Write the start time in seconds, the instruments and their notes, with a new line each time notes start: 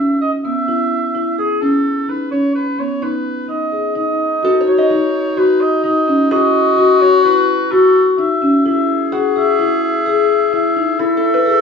Already playing: oboe E5
0.00 marimba C#4
0.21 oboe D#5
0.44 marimba B3, oboe E5
0.68 marimba E4
1.15 marimba E4
1.38 marimba G#4, oboe G#4
1.61 marimba C#4, oboe A4
2.08 marimba D#4, oboe B4
2.31 marimba C#4, oboe C#5
2.55 oboe B4
2.78 marimba B3, oboe C#5
3.02 marimba D#4, oboe B4
3.49 marimba D#4, oboe D#5
3.72 marimba G#4
3.95 marimba D#4, clarinet D#4, oboe D#5
4.43 marimba F#4, five-string banjo A4
4.61 five-string banjo C#5
4.67 marimba F#4, oboe C#5
4.78 five-string banjo D#5
4.90 marimba D#4
5.37 marimba F#4, oboe B4
5.61 oboe D#5
5.84 marimba D#4, oboe D#5
6.08 marimba C#4
6.31 marimba E4, clarinet F#4, five-string banjo G#4, oboe D#5
6.78 marimba F#4
7.01 marimba F#4, oboe C#5
7.24 marimba E4, oboe B4
7.71 marimba F#4, clarinet F#4, oboe A4
8.18 marimba D#4, oboe E5
8.42 marimba C#4
8.65 marimba E4, clarinet G#4, oboe E5
9.12 five-string banjo F#4, marimba G#4
9.36 marimba G#4, oboe E5
9.59 marimba E4
9.84 oboe E5
10.06 marimba G#4
10.53 marimba E4, oboe E5
10.76 marimba D#4
10.99 marimba E4, five-string banjo E4, clarinet A4, oboe E5
11.17 five-string banjo A4
11.34 five-string banjo B4
11.46 marimba G#4